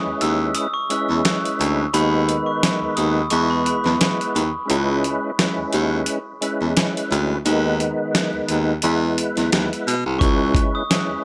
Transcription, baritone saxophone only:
0.06 D#2
0.22 D#2
1.09 E2
1.59 D2
1.94 D#2
2.82 D#2
2.97 D#2
3.32 E2
3.85 E2
4.35 D#2
4.70 C#2
5.58 D#2
5.73 D#2
6.61 E2
7.11 D2
7.46 D#2
8.34 D#2
8.49 D#2
8.84 E2
9.37 E2
9.53 D#2
9.87 B2
10.06 C2
10.21 C#2
11.09 D#2

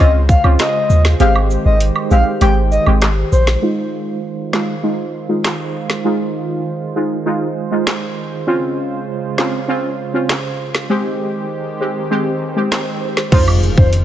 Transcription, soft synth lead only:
0.00 D#5
0.29 F5
0.59 D#5
1.20 F5
1.66 D#5
2.11 F5
2.41 G5
2.71 D#5
3.32 C5
13.32 C5
13.78 C5

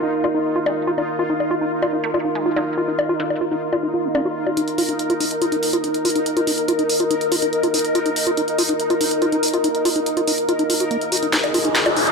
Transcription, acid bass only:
0.03 D#4
0.24 F4
0.35 D#4
0.56 F4
0.66 D#4
0.87 F4
0.98 D#4
1.19 F4
1.30 D#4
1.51 F4
1.61 D#4
1.82 F4
1.93 D#4
2.14 F4
2.25 D#4
2.46 F4
2.56 D#4
2.77 F4
2.88 D#4
3.09 F4
3.20 D#4
3.41 F4
3.51 D#4
3.73 F4
3.83 D#4
3.94 F4
4.04 A#3
4.15 C#4
4.25 F#4
4.46 F#4
4.57 D#4
4.78 F4
4.89 D#4
5.10 F4
5.20 D#4
5.42 F4
5.52 D#4
5.73 F4
5.84 D#4
6.05 F4
6.16 D#4
6.37 F4
6.47 D#4
6.68 F4
6.79 D#4
7.00 F4
7.11 D#4
7.32 F4
7.42 D#4
7.63 F4
7.74 D#4
7.95 F4
8.06 D#4
8.27 F4
8.37 D#4
8.58 F4
8.69 D#4
8.90 F4
9.01 D#4
9.22 F4
9.32 D#4
9.54 F4
9.64 D#4
9.85 F4
9.96 D#4
10.17 F4
10.28 D#4
10.49 F4
10.59 D#4
10.70 F4
10.80 F#4
10.91 A#3
11.12 F#4
11.23 D#4
11.33 D#4
11.54 F4
11.65 D#4
11.86 F4
11.96 D#4

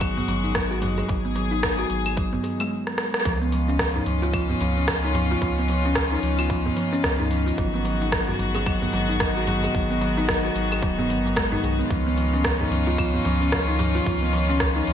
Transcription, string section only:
Already playing: D#3 G#3 B3 F#4
1.09 G#4
3.26 D#3 B3 C#4 F4
7.57 G#3 B3 F#4
11.90 C#4 F4

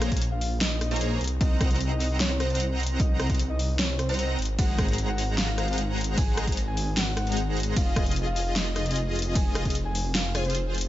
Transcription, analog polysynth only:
0.12 A#3 G#4 C5 C#5 A#5
0.91 A#3 G#4 C5 C#5 A#5
1.41 C4 C5 D#5 F#5 A#5
1.71 C4 C5 D#5 F#5 A#5
2.50 C4 C5 D#5 F#5 A#5
3.30 C4 C5 D#5 F#5 A#5
4.09 C4 C5 D#5 F#5 A#5
4.59 G#3 G#4 C5 F#5 A#5
4.89 G#3 G#4 C5 F#5 A#5
5.68 G#3 G#4 C5 F#5 A#5
6.47 G#3 G#4 C5 F#5 A#5
7.27 G#3 G#4 C5 F#5 A#5
7.76 F4 G#4 D#5
8.06 F4 G#4 D#5
8.86 F4 G#4 D#5
9.65 F4 G#4 D#5
10.35 F4 G#4 G#5
10.45 F4 G#4 C5

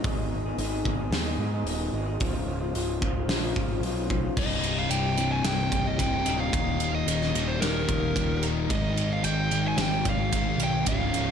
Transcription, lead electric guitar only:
4.39 D#5
4.79 F5
4.91 G5
5.32 G#5
5.46 G5
5.87 D#5
5.99 G5
6.40 F5
6.95 D#5
7.48 C5
7.60 A#4
8.71 D#5
9.13 F5
9.24 G5
9.68 G#5
9.81 G5
10.09 F5
10.64 G5
10.88 F5

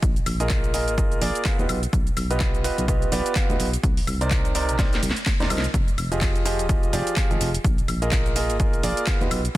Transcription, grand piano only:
0.40 A#3 F4 G#4 A#4 D#5
0.74 A#3 F4 G#4 A#4 D#5
0.98 A#3 F4 G#4 A#4 D#5
1.22 A#3 F4 G#4 A#4 D5
1.45 B3 F4
1.59 B3 F4 G4 B4 D#5
2.31 B3 F4 G4 B4 D#5
2.64 B3 F4 G4 B4 D#5
2.88 B3 F4 G4 B4 D#5
3.12 B3 F4 G4 B4 D5
3.50 B3 F4 G4 B4 D#5
4.21 C3 D#4 A#4 C5 D5
4.55 C3 D#4 A#4 C5 D5
4.79 C3 D#4 A#4 C5 D5
5.40 C3 D#4 A#4 C5 D5
5.50 F3 D#4 A#4 C5 D#5
6.12 F3 F4 G4 G#4 D#5
6.45 F3 F4 G4 G#4 D#5
6.69 F3 F4 G4 G#4 D#5
6.93 F3 F4 G4 G#4 D5
7.30 F3 F4 G4 G#4 D#5
8.02 A#3 F4 G#4 A#4 D#5
8.36 A#3 F4 G#4 A#4 D#5
8.60 A#3 F4 G#4 A#4 D#5
8.84 A#3 F4 G#4 A#4 D5
9.07 F4
9.21 B3 F4 G4 B4 D#5

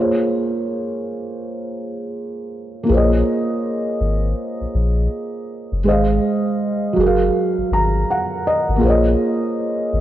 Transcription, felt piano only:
Already playing: A#3 F4 G#4 C5
0.01 C#5
2.83 A#3 F4
2.89 G#4 C5
2.94 C#5 D#5
5.84 G#3 G#4 C5
5.89 D#5 F5
6.93 F#3 F#4
7.00 G#4 A#4
7.07 F5
7.73 A#5
8.11 F#5
8.47 D#5
8.76 A#3 F4
8.81 G#4 C5
8.87 C#5 D#5

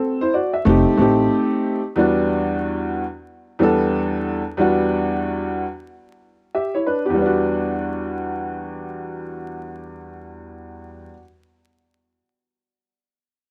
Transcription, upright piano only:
Already playing: C4 A4
0.21 E4 C5
0.34 F#4 D5
0.53 E5
0.65 A3 C4 D#4 G4
0.97 A3 C4 D#4 G4
1.96 E2 G3 B3 D4 F#4
3.59 E2 G3 B3 D4 A4
4.57 E2 G3 B3 D4 F#4
6.55 G4 E5
6.74 E4 C#5
6.86 D4 B4
7.06 B3 G4
7.10 E2
7.14 G3 B3
7.22 D4
7.26 F#4

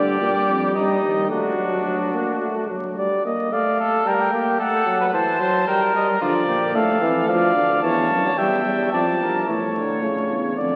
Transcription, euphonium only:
Already playing: D3
0.21 G3
1.29 A3
1.57 F#3
1.86 F#3
2.14 A#3
2.41 A3
2.70 F#3
2.97 G3
3.25 A#3
3.52 A3
4.06 G3
4.32 A#3
4.59 A3
4.85 F#3
5.13 E3
5.40 F#3
5.67 G3
5.94 G3
6.21 F3
6.74 A3
7.01 E3
7.28 F3
7.56 D3
7.83 E3
8.24 F#3
8.37 G3
8.65 G3
8.93 F3
9.47 E3
9.75 D3
10.02 C#3
10.57 D3

